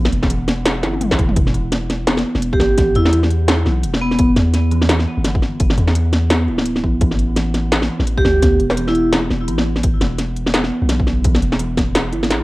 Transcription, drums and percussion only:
0.05 snare
0.12 closed hi-hat
0.23 kick, snare
0.30 closed hi-hat
0.48 snare, closed hi-hat
0.66 snare, closed hi-hat
0.83 snare, closed hi-hat
0.93 high tom
1.01 closed hi-hat, mid tom
1.11 kick, snare
1.19 kick, closed hi-hat
1.29 mid tom
1.36 kick, closed hi-hat
1.47 snare
1.54 closed hi-hat
1.72 snare, closed hi-hat
1.90 snare, closed hi-hat
2.07 snare, closed hi-hat
2.17 snare
2.35 snare
2.42 closed hi-hat
2.53 kick
2.60 snare
2.78 kick, snare, closed hi-hat
2.95 closed hi-hat
3.05 snare
3.13 closed hi-hat
3.23 snare
3.30 closed hi-hat
3.48 snare, closed hi-hat
3.66 snare
3.83 closed hi-hat
3.94 snare
4.11 snare
4.19 kick, closed hi-hat
4.36 snare, closed hi-hat
4.54 snare, closed hi-hat
4.71 closed hi-hat
4.82 snare
4.89 snare, closed hi-hat
4.99 snare
5.24 snare, closed hi-hat
5.35 kick
5.42 snare
5.60 kick, closed hi-hat
5.70 snare
5.78 closed hi-hat
5.88 snare
5.95 closed hi-hat
6.13 snare, closed hi-hat
6.30 snare, closed hi-hat
6.58 snare
6.66 closed hi-hat
6.76 snare
6.84 kick
7.01 kick, closed hi-hat
7.11 snare
7.19 closed hi-hat
7.36 snare, closed hi-hat
7.54 snare, closed hi-hat
7.72 snare, closed hi-hat
7.82 snare
8.00 snare
8.07 closed hi-hat
8.17 kick
8.25 snare
8.42 kick, snare, closed hi-hat
8.60 closed hi-hat
8.70 snare
8.77 closed hi-hat
8.88 snare
8.95 closed hi-hat
9.13 snare, closed hi-hat
9.30 snare
9.48 closed hi-hat
9.58 snare
9.76 snare
9.83 kick, closed hi-hat
10.01 snare, closed hi-hat
10.18 snare, closed hi-hat
10.36 closed hi-hat
10.46 snare
10.54 snare, closed hi-hat
10.64 snare
10.89 snare, closed hi-hat
11.00 kick
11.07 snare
11.24 kick, closed hi-hat
11.35 snare
11.42 closed hi-hat
11.52 snare
11.59 closed hi-hat
11.77 kick, snare, closed hi-hat
11.95 snare, closed hi-hat
12.13 closed hi-hat
12.23 snare
12.30 snare, closed hi-hat

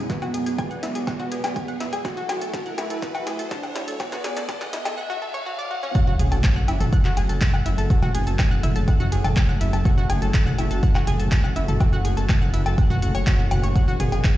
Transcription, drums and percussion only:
0.10 kick, snare, closed hi-hat
0.22 closed hi-hat, low woodblock
0.34 closed hi-hat
0.46 closed hi-hat
0.58 kick, closed hi-hat, mid tom, low woodblock
0.71 closed hi-hat
0.83 snare, closed hi-hat
0.95 closed hi-hat
1.07 kick, snare, closed hi-hat, low woodblock
1.20 closed hi-hat, mid tom
1.32 closed hi-hat
1.44 snare, closed hi-hat, low woodblock
1.56 kick, closed hi-hat
1.68 closed hi-hat
1.80 snare, closed hi-hat, mid tom
1.93 closed hi-hat, low woodblock
2.05 kick, snare, closed hi-hat
2.17 closed hi-hat
2.29 snare, closed hi-hat, low woodblock
2.41 closed hi-hat, mid tom
2.54 kick, snare, closed hi-hat
2.66 closed hi-hat
2.78 snare, closed hi-hat, low woodblock
2.90 closed hi-hat
3.02 kick, snare, closed hi-hat, mid tom
3.15 closed hi-hat, low woodblock
3.27 snare, closed hi-hat
3.39 closed hi-hat
3.51 kick, snare, closed hi-hat
3.63 closed hi-hat, mid tom, low woodblock
3.76 snare, closed hi-hat
3.88 closed hi-hat
4.00 kick, snare, closed hi-hat, low woodblock
4.12 snare, closed hi-hat
4.24 snare, closed hi-hat, mid tom
4.37 snare, closed hi-hat
4.49 kick, snare, closed hi-hat, low woodblock
4.61 snare, closed hi-hat
4.73 snare, closed hi-hat
4.85 snare, closed hi-hat, mid tom, low woodblock
5.95 kick, closed hi-hat
6.19 closed hi-hat, mid tom
6.32 closed hi-hat, low woodblock
6.44 kick, clap, closed hi-hat
6.68 closed hi-hat, low woodblock
6.80 closed hi-hat, mid tom
6.93 kick, closed hi-hat
7.05 clap
7.17 closed hi-hat, low woodblock
7.29 closed hi-hat
7.41 kick, clap, closed hi-hat, mid tom
7.54 low woodblock
7.66 closed hi-hat
7.78 closed hi-hat
7.90 kick, closed hi-hat
8.03 mid tom, low woodblock
8.15 closed hi-hat
8.27 closed hi-hat
8.39 kick, clap, closed hi-hat, low woodblock
8.63 closed hi-hat, mid tom
8.76 closed hi-hat
8.88 kick, closed hi-hat, low woodblock
9.12 closed hi-hat
9.24 closed hi-hat, mid tom, low woodblock
9.37 kick, clap, closed hi-hat
9.61 closed hi-hat
9.73 closed hi-hat, low woodblock
9.85 kick, closed hi-hat, mid tom
10.10 closed hi-hat, low woodblock
10.22 closed hi-hat
10.34 kick, clap, closed hi-hat
10.46 mid tom
10.58 closed hi-hat, low woodblock
10.71 closed hi-hat
10.83 kick, closed hi-hat
10.95 clap, low woodblock
11.07 closed hi-hat, mid tom
11.20 closed hi-hat
11.32 kick, clap, closed hi-hat
11.44 low woodblock
11.56 closed hi-hat
11.68 closed hi-hat, mid tom
11.80 kick, closed hi-hat, low woodblock
12.05 closed hi-hat
12.17 closed hi-hat
12.29 kick, clap, closed hi-hat, mid tom, low woodblock
12.54 closed hi-hat
12.66 closed hi-hat, low woodblock
12.78 kick, closed hi-hat
12.90 mid tom
13.02 closed hi-hat
13.15 closed hi-hat, low woodblock
13.27 kick, clap, closed hi-hat
13.51 closed hi-hat, mid tom, low woodblock
13.63 closed hi-hat
13.76 kick, closed hi-hat
14.00 closed hi-hat, mid tom
14.12 closed hi-hat, low woodblock
14.24 kick, clap, closed hi-hat

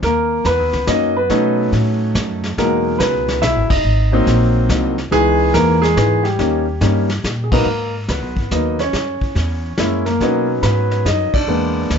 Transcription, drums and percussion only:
0.03 brush sweep, kick, snare
0.45 kick, snare, hi-hat pedal
0.73 snare
0.87 kick, snare, hi-hat pedal
1.30 brush sweep, kick, snare
1.73 kick, snare
2.15 kick, snare, hi-hat pedal
2.44 snare
2.58 brush sweep, kick, snare
3.00 kick, snare, hi-hat pedal
3.28 snare
3.42 kick, snare, hi-hat pedal
3.70 kick, crash
3.84 brush sweep
4.27 kick, snare
4.69 kick, snare, hi-hat pedal
4.98 snare
5.12 brush sweep, kick, snare
5.54 kick, snare, hi-hat pedal
5.83 snare
5.97 kick, snare, hi-hat pedal
6.25 snare
6.39 brush sweep, kick, snare
6.81 kick, snare, hi-hat pedal
7.09 snare
7.24 kick, snare, hi-hat pedal
7.52 kick, crash
7.66 brush sweep
8.08 kick, snare, hi-hat pedal
8.37 kick
8.51 kick, snare, hi-hat pedal
8.79 snare
8.93 brush sweep, kick, snare
9.21 kick
9.36 kick, snare
9.77 kick, snare, hi-hat pedal
10.06 snare
10.21 brush sweep, kick, snare
10.63 kick, snare, hi-hat pedal
10.91 snare
11.06 kick, snare, hi-hat pedal
11.34 kick, ride
11.49 brush sweep
11.90 kick, snare, hi-hat pedal

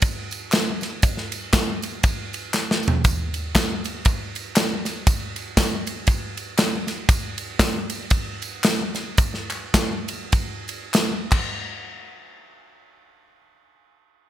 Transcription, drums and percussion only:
0.02 kick, ride, tambourine
0.31 ride, tambourine
0.52 snare, clap, ride, tambourine
0.81 snare, ride, tambourine
1.02 kick, ride, tambourine
1.17 snare
1.32 ride, tambourine
1.53 kick, snare, clap, ride, tambourine
1.82 ride, tambourine
2.03 kick, ride, tambourine
2.33 ride, tambourine
2.54 snare, clap, tambourine
2.71 snare
2.83 tambourine
2.88 floor tom
3.04 kick, ride, tambourine
3.34 ride, tambourine
3.55 kick, snare, clap, ride, tambourine
3.84 ride, tambourine
4.05 kick, ride, tambourine
4.35 ride, tambourine
4.56 snare, clap, ride, tambourine
4.85 snare, ride, tambourine
5.07 kick, ride, tambourine
5.36 ride, tambourine
5.57 kick, snare, clap, ride, tambourine
5.87 ride, tambourine
6.07 kick, ride, tambourine
6.37 ride, tambourine
6.58 snare, clap, ride, tambourine
6.87 snare, ride, tambourine
7.09 kick, ride, tambourine
7.38 ride, tambourine
7.59 kick, snare, clap, ride, tambourine
7.90 ride, tambourine
8.10 kick, ride, tambourine
8.42 ride, tambourine
8.64 snare, clap, ride, tambourine
8.95 snare, ride, tambourine
9.17 kick, ride, tambourine
9.34 snare
9.50 clap, ride, tambourine
9.74 kick, snare, clap, ride, tambourine
10.08 ride, tambourine
10.32 kick, ride, tambourine
10.68 ride, tambourine
10.94 snare, clap, ride, tambourine
11.31 kick, clap, crash

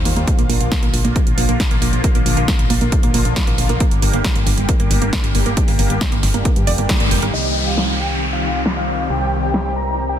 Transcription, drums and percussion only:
0.05 open hi-hat
0.17 closed hi-hat
0.27 kick, closed hi-hat
0.39 closed hi-hat
0.50 open hi-hat
0.61 closed hi-hat
0.72 kick, snare, closed hi-hat
0.83 closed hi-hat
0.94 open hi-hat
1.05 closed hi-hat
1.16 kick, closed hi-hat
1.27 closed hi-hat
1.38 open hi-hat
1.49 closed hi-hat
1.60 kick, snare, closed hi-hat
1.71 closed hi-hat
1.82 open hi-hat
1.93 closed hi-hat
2.04 kick, closed hi-hat
2.15 closed hi-hat
2.26 open hi-hat
2.37 closed hi-hat
2.48 kick, snare, closed hi-hat
2.59 closed hi-hat
2.70 open hi-hat
2.81 closed hi-hat
2.92 kick, closed hi-hat
3.03 closed hi-hat
3.14 open hi-hat
3.25 closed hi-hat
3.36 kick, snare, closed hi-hat
3.47 closed hi-hat
3.58 open hi-hat
3.69 closed hi-hat
3.80 kick, closed hi-hat
3.91 closed hi-hat
4.02 open hi-hat
4.13 closed hi-hat
4.24 kick, snare, closed hi-hat
4.36 closed hi-hat
4.47 open hi-hat
4.58 closed hi-hat
4.69 kick, closed hi-hat
4.80 closed hi-hat
4.91 open hi-hat
5.02 closed hi-hat
5.13 kick, snare, closed hi-hat
5.24 closed hi-hat
5.35 open hi-hat
5.46 closed hi-hat
5.57 kick, closed hi-hat
5.68 open hi-hat
5.79 open hi-hat
5.90 closed hi-hat
6.01 kick, snare, closed hi-hat
6.12 closed hi-hat
6.23 snare, open hi-hat
6.34 closed hi-hat
6.45 kick, closed hi-hat
6.56 closed hi-hat
6.67 open hi-hat
6.78 closed hi-hat
6.89 kick, snare, closed hi-hat
7.00 closed hi-hat
7.11 open hi-hat
7.22 closed hi-hat
7.78 snare
8.66 snare
9.54 snare

